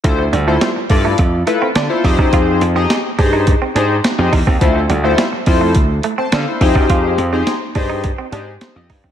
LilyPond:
<<
  \new Staff \with { instrumentName = "Analog polysynth" } { \time 4/4 \key f \lydian \tempo 4 = 105 << { r1 | r1 | r2 r8. <c'' a''>16 <a' f''>16 <e' c''>8 r16 | r2. <ees' c''>16 <g' ees''>16 <f' d''>16 <ees' c''>16 | } \\ { <e' f' a' c''>16 r8 <e' f' a' c''>16 r8 <e' f' a' d''>8 r8 <e' f' a' b'>16 r8 <e' f' a' c''>16 <ees' g' aes' c''>8~ | <ees' g' aes' c''>8 r16 <ees' g' aes' ees''>16 r8 <ees' g' aes' c''>8 r8 <ees' g' aes' c''>16 r8 <ees' g' aes' c''>16 r8 | <e' f' a' c''>16 r8 <e' f' a' c''>16 r8 <e' f' a' c''>8 r4. <ees' g' aes' c''>8~ | <ees' g' aes' c''>8 r16 <ees' g' aes' c''>16 r8 <ees' g' aes' c''>8 r8 <ees' g' aes' c''>16 r4 r16 | } >> }
  \new Staff \with { instrumentName = "Clean electric guitar" } { \time 4/4 \key f \lydian r8 g16 a16 g16 r8 a16 r8 a16 c'16 d'16 r8 ees'16 | f'16 r8 c'16 r8 d'16 ees'16 r16 c'16 d'16 r8. ees'16 c'16 | r8 g16 a16 g16 r8 a16 r8 a16 c'16 d'16 r8 ees'16 | f'16 r8 c'16 r8 d'16 ees'16 r16 c'16 d'16 r8. ees'16 c'16 | }
  \new Staff \with { instrumentName = "Slap bass" } { \clef bass \time 4/4 \key f \lydian d,8 d,8 r8 g,8 f,8 r8 d16 r16 f,16 fis,16 | f,8 f,8 r8 g,8. r16 aes,8 r16 f,16 e,16 ees,16 | d,8 d,8 r8 f,8 d,8 r8 d16 r16 f,16 fis,16 | f,8 f,8 r8 g,8. r16 aes,8 r16 f,16 g,16 fis,16 | }
  \new DrumStaff \with { instrumentName = "Drums" } \drummode { \time 4/4 <hh bd>8 hh8 <hh sn>8 <hho bd>8 <hh bd>8 hh8 <hh sn>8 <hho bd>16 bd16 | <hh bd>8 hh8 <hh sn>8 <hho bd>8 <hh bd>8 hh8 <hh sn>8 <hho bd>16 bd16 | <hh bd>8 hh8 <hh sn>8 <hho bd>8 <hh bd>8 hh8 <hh sn>8 <hho bd>16 bd16 | <hh bd>8 hh8 <hh sn>8 <hho bd>8 <hh bd>8 hh8 <hh sn>8 <hho bd>16 bd16 | }
>>